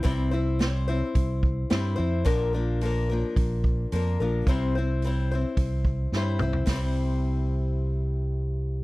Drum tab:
HH |o---o---o---o---|o---o---o---o---|o---o---o-------|o---------------|
SD |----o-------o---|----------------|------------o---|o---------------|
T2 |----------------|----------------|--------------o-|----------------|
FT |----------------|----------------|---------------o|----------------|
BD |o-------o-o-----|o-------o-o-----|o-------o-o-----|o---------------|